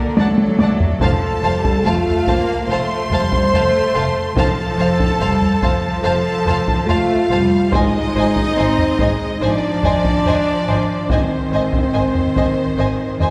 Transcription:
Already playing: cello section D3, french horn section A#3, violin section A#4
0.17 double bass section D2, cello section F#3, french horn section A3, violin section A4 F#5 A5, viola section D5, taiko high
0.38 taiko high
0.59 double bass section D2, viola section D5, violin section F#5 A5, taiko high
0.80 taiko low
1.01 double bass section F1, cello section F3, french horn section A4, viola section C5, violin section F5 A5, taiko
1.43 double bass section F1, cello section G3, viola section C5, violin section F5 A5
1.64 taiko
1.84 double bass section F1, cello section A3, french horn section F4, viola section C5, violin section F5 A5
2.07 taiko low
2.27 double bass section F1, cello section A#3, viola section C5, violin section F5 A5, taiko
2.67 double bass section F1, cello section A3, french horn section C5, viola section C5, violin section F5 A5 C6
3.11 double bass section F1, cello section G3, viola section C5, violin section F5 A5, taiko low
3.32 taiko
3.52 double bass section F1, cello section A3, viola section C5, violin section F5 A5, taiko low
3.94 double bass section F1, viola section C5, violin section F5 A5
4.36 double bass section F1, cello section F3, french horn section A4, viola section C5, violin section F5 A5, taiko
4.78 double bass section F1, viola section C5, violin section F5 A5
5.00 taiko
5.20 double bass section F1, cello section G3, viola section C5, violin section F5 A5
5.42 taiko low
5.62 double bass section F1, cello section F3, viola section C5, violin section F5 A5, taiko
6.04 double bass section F1, french horn section A4, viola section C5, violin section F5 A5
6.47 double bass section F1, viola section C5, violin section F5 A5, taiko low
6.68 taiko
6.87 double bass section F1, cello section A3, french horn section F4, viola section C5, violin section F5 A5, taiko low
7.31 double bass section F1, cello section G3, viola section C5, violin section F5 A5
7.71 double bass section G#1, cello section G#3, french horn section D#4, viola section C5, violin section D#5 G#5, taiko
8.15 double bass section G#1, viola section C5, violin section D#5 G#5
8.36 taiko
8.57 double bass section G#1, cello section C4, viola section C5, violin section D#5 G#5
8.78 taiko low
8.99 double bass section G#1, cello section G#3, viola section C5, violin section D#5 G#5, taiko
9.40 double bass section G#1, cello section F3, french horn section D4, viola section C5, violin section D5 D#5 G#5
9.83 double bass section G#1, viola section C5, violin section D#5 G#5, taiko low
10.04 taiko
10.25 double bass section G#1, viola section C5, violin section D#5 G#5, taiko low
10.67 double bass section G#1, viola section C5, violin section D#5 G#5
11.09 double bass section G#1, cello section D#3, french horn section C4, violin section C5 D#5 G#5, viola section C5, taiko
11.52 double bass section G#1, viola section C5, violin section D#5 G#5
11.73 taiko
11.94 double bass section G#1, viola section C5, violin section D#5 G#5
12.15 taiko low
12.36 double bass section G#1, viola section C5, violin section D#5 G#5, taiko
12.77 double bass section G#1, viola section C5, violin section D#5 G#5
13.19 double bass section G#1, viola section C5, violin section D#5 G#5, taiko low

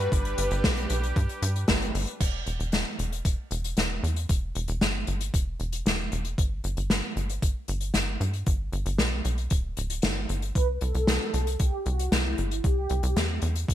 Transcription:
Already playing: analog synth pad G3 D4 B4, analog polysynth B4
0.12 analog synth bass G1, analog synth pad G4, kick, closed hi-hat
0.25 closed hi-hat
0.38 analog synth bass G1, closed hi-hat
0.51 analog synth bass G1, closed hi-hat
0.64 analog synth bass B1, kick, snare, closed hi-hat
0.77 closed hi-hat
0.90 analog synth bass B1, closed hi-hat
1.03 closed hi-hat
1.16 analog synth bass G2, kick, closed hi-hat
1.29 closed hi-hat
1.42 analog synth bass G2, closed hi-hat
1.56 closed hi-hat
1.68 analog synth bass G1, kick, snare, closed hi-hat
1.82 closed hi-hat
1.94 analog synth bass G1, open hi-hat
2.07 closed hi-hat
2.20 analog synth bass E1, kick, closed hi-hat, crash
2.46 analog synth bass E1, closed hi-hat
2.60 analog synth bass E1, closed hi-hat
2.72 analog synth bass E1, snare, closed hi-hat
2.99 analog synth bass E1, closed hi-hat
3.12 closed hi-hat
3.25 analog synth bass E1, kick, closed hi-hat
3.51 analog synth bass E1, closed hi-hat
3.64 closed hi-hat
3.77 analog synth bass E1, snare, closed hi-hat
4.03 analog synth bass E2, closed hi-hat
4.16 closed hi-hat
4.29 analog synth bass E1, kick, closed hi-hat
4.55 analog synth bass E1, closed hi-hat
4.68 analog synth bass E1, closed hi-hat
4.81 analog synth bass G1, snare, closed hi-hat
5.07 analog synth bass G1, closed hi-hat
5.21 closed hi-hat
5.34 analog synth bass E1, kick, closed hi-hat
5.60 analog synth bass E1, closed hi-hat
5.72 closed hi-hat
5.86 analog synth bass E1, snare, closed hi-hat
6.12 analog synth bass E1, closed hi-hat
6.25 closed hi-hat
6.38 analog synth bass G1, kick, closed hi-hat
6.64 analog synth bass G1, closed hi-hat
6.77 analog synth bass G1, closed hi-hat
6.90 analog synth bass G1, snare, closed hi-hat
7.16 analog synth bass G1, closed hi-hat
7.29 closed hi-hat
7.42 analog synth bass G1, kick, closed hi-hat
7.68 analog synth bass G1, closed hi-hat
7.81 closed hi-hat
7.94 analog synth bass G1, snare, closed hi-hat
8.20 analog synth bass G2, closed hi-hat
8.33 closed hi-hat
8.46 analog synth bass G1, kick, closed hi-hat
8.72 analog synth bass G1, closed hi-hat
8.86 analog synth bass G1, closed hi-hat
8.98 analog synth bass B1, snare, closed hi-hat
9.25 analog synth bass B1, closed hi-hat
9.38 closed hi-hat
9.50 analog synth bass D1, kick, closed hi-hat
9.77 analog synth bass D1, closed hi-hat
9.90 closed hi-hat
10.02 analog synth bass G1, snare, closed hi-hat
10.29 analog synth bass G1, closed hi-hat
10.42 closed hi-hat
10.55 analog synth bass C2, analog polysynth B4, kick, closed hi-hat
10.81 analog synth bass C2, analog polysynth A4, closed hi-hat
10.95 analog synth bass C2, closed hi-hat
11.07 analog synth bass C2, snare, closed hi-hat
11.34 analog synth bass C2, closed hi-hat
11.47 closed hi-hat
11.59 analog synth bass C2, analog polysynth G4, kick, closed hi-hat
11.86 analog synth bass C2, analog polysynth F#4, closed hi-hat
11.99 closed hi-hat
12.12 analog synth bass C2, analog polysynth E4, snare, closed hi-hat
12.38 analog synth bass G1, closed hi-hat
12.51 closed hi-hat
12.64 analog synth bass C2, analog polysynth G4, kick, closed hi-hat
12.89 analog synth bass C2, closed hi-hat
13.03 analog synth bass C2, closed hi-hat
13.16 analog synth bass E2, snare, closed hi-hat
13.42 analog synth bass E2, closed hi-hat
13.55 closed hi-hat
13.68 analog synth bass C2, kick, closed hi-hat

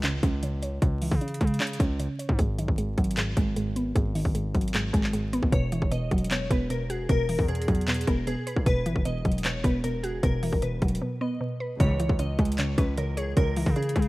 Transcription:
Already playing: 808-style bass C#2, synth pluck E3 G#3, impact
0.04 synth pluck C#3, clap, closed hi-hat
0.23 808-style bass C#2, synth pluck C#4, kick, closed hi-hat
0.43 synth pluck C#3, closed hi-hat
0.62 synth pluck C#5, closed hi-hat
0.82 808-style bass C#2, synth pluck C#3, kick, closed hi-hat
1.02 synth pluck E3, open hi-hat
1.11 808-style bass C#3, kick
1.21 synth pluck C#3, closed hi-hat
1.28 closed hi-hat
1.34 closed hi-hat
1.41 808-style bass C#3, synth pluck G#3, kick, closed hi-hat
1.47 closed hi-hat
1.54 closed hi-hat
1.60 synth pluck C#3, clap, closed hi-hat
1.67 closed hi-hat
1.73 closed hi-hat
1.79 808-style bass C#2, synth pluck C#4, kick, closed hi-hat
2.00 synth pluck C#3, closed hi-hat
2.19 synth pluck C#5, closed hi-hat
2.29 808-style bass G#2, kick
2.39 808-style bass G#1, synth pluck G#2, kick, closed hi-hat
2.58 808-style bass B1, synth pluck D#3, closed hi-hat
2.68 808-style bass G#1, kick
2.78 synth pluck G#2, closed hi-hat
2.97 808-style bass G#1, synth pluck F#3, kick, closed hi-hat
3.04 closed hi-hat
3.11 closed hi-hat
3.17 synth pluck G#2, clap, closed hi-hat
3.37 808-style bass G#1, synth pluck G#3, kick, closed hi-hat
3.56 synth pluck G#2, closed hi-hat
3.76 synth pluck B3, closed hi-hat
3.95 808-style bass G#1, synth pluck G#2, kick, closed hi-hat
4.15 synth pluck D#3, open hi-hat
4.25 808-style bass G#1, kick
4.34 synth pluck G#2, closed hi-hat
4.55 808-style bass G#1, synth pluck F#3, kick, closed hi-hat
4.61 closed hi-hat
4.68 closed hi-hat
4.74 synth pluck G#2, clap, closed hi-hat
4.93 808-style bass G#1, synth pluck G#3, kick, closed hi-hat
5.04 clap
5.13 synth pluck G#2, closed hi-hat
5.33 synth pluck B3, closed hi-hat
5.43 808-style bass G#1, kick
5.52 808-style bass E1, synth pluck B2, synth keys C#5, kick, closed hi-hat
5.72 synth pluck E3, closed hi-hat
5.82 808-style bass E1, kick
5.92 synth pluck B2, synth keys D#5, closed hi-hat
6.11 808-style bass E1, synth pluck F#3, kick, closed hi-hat
6.18 closed hi-hat
6.24 closed hi-hat
6.31 synth pluck B2, synth keys C#5, clap, closed hi-hat
6.50 808-style bass E1, synth pluck B3, synth keys B4, kick, closed hi-hat
6.70 synth pluck B2, synth keys A#4, closed hi-hat
6.90 synth pluck F#4, synth keys G#4, closed hi-hat
7.09 808-style bass E1, synth pluck B2, synth keys A#4, kick, closed hi-hat
7.29 synth pluck E3, open hi-hat
7.39 808-style bass E2, kick
7.48 synth pluck B2, synth keys G#4, closed hi-hat
7.55 closed hi-hat
7.62 closed hi-hat
7.68 808-style bass E2, synth pluck F#3, kick, closed hi-hat
7.75 closed hi-hat
7.81 closed hi-hat
7.88 synth pluck B2, synth keys G#4, clap, closed hi-hat
7.94 closed hi-hat
8.01 closed hi-hat
8.07 808-style bass E1, synth pluck B3, synth keys A#4, kick, closed hi-hat
8.27 synth pluck B2, synth keys G#4, closed hi-hat
8.47 synth keys G#4, synth pluck B4, closed hi-hat
8.56 808-style bass B1, kick
8.66 808-style bass E1, synth pluck B2, synth keys B4, kick, closed hi-hat
8.86 808-style bass G#1, synth pluck E3, closed hi-hat
8.96 808-style bass E1, kick
9.05 synth pluck B2, synth keys D#5, closed hi-hat
9.25 808-style bass E1, synth pluck F#3, kick, closed hi-hat
9.32 closed hi-hat
9.38 closed hi-hat
9.45 synth pluck B2, synth keys C#5, clap, closed hi-hat
9.64 808-style bass E1, synth pluck B3, synth keys B4, kick, closed hi-hat
9.84 synth pluck B2, synth keys A#4, closed hi-hat
10.03 synth pluck F#4, synth keys G#4, closed hi-hat
10.23 808-style bass E1, synth pluck B2, synth keys A#4, kick, closed hi-hat
10.43 synth pluck E3, open hi-hat
10.52 808-style bass E1, kick
10.62 synth pluck B2, synth keys B4, closed hi-hat
10.82 808-style bass E1, synth pluck F#3, kick, closed hi-hat
10.88 closed hi-hat
10.95 closed hi-hat
11.02 synth pluck B2
11.21 synth pluck B3, synth keys D#5
11.41 synth pluck B2
11.60 synth pluck B4
11.80 808-style bass C#2, string section C#2 G#2 E3, synth pluck C#3, ambient pad E3 G#3 C#4 G#4, synth keys C#5, kick, closed hi-hat
12.00 synth pluck E3, closed hi-hat
12.09 808-style bass C#2, kick
12.19 synth pluck C#3, synth keys D#5, closed hi-hat
12.39 808-style bass C#2, synth pluck G#3, kick, closed hi-hat
12.45 closed hi-hat
12.52 closed hi-hat
12.58 synth pluck C#3, synth keys C#5, clap, closed hi-hat
12.78 808-style bass C#2, synth pluck C#4, synth keys B4, kick, closed hi-hat
12.98 synth pluck C#3, synth keys A#4, closed hi-hat
13.17 synth keys G#4, synth pluck C#5, closed hi-hat
13.37 808-style bass C#2, synth pluck C#3, synth keys A#4, kick, closed hi-hat
13.56 synth pluck E3, open hi-hat
13.66 808-style bass C#3, kick
13.76 synth pluck C#3, synth keys G#4, closed hi-hat
13.82 closed hi-hat
13.89 closed hi-hat
13.96 808-style bass C#3, synth pluck G#3, kick, closed hi-hat
14.02 closed hi-hat

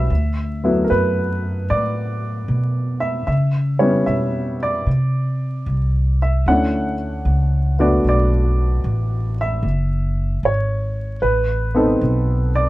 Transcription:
Already playing: grand piano G3 B3 C#4 F#4 B4 E5
0.10 upright bass D2
0.64 grand piano F#3 A3 B3 E4
0.84 grand piano A#4
0.90 upright bass F#2, grand piano B4
1.70 upright bass A2, grand piano D5
2.48 upright bass B2
3.00 grand piano E5
3.27 upright bass C#3, grand piano E5
3.79 grand piano G3 B3 C#4 E4 C#5
4.06 upright bass B2, grand piano E5
4.63 grand piano D5
4.86 upright bass C3
5.66 upright bass C2
6.22 grand piano E5
6.46 upright bass D2, grand piano A3 C#4 D4 E4 F#5
7.25 upright bass C#2
7.79 grand piano A3 B3 D4 F#4 D5
8.04 upright bass B1
8.09 grand piano D5
8.84 upright bass A1
9.41 grand piano E5
9.63 upright bass F#1
10.43 upright bass G#1, grand piano C#5
11.22 upright bass A1, grand piano B4
11.75 grand piano B3 C4 D#4 A4
12.01 upright bass B1
12.55 grand piano D5

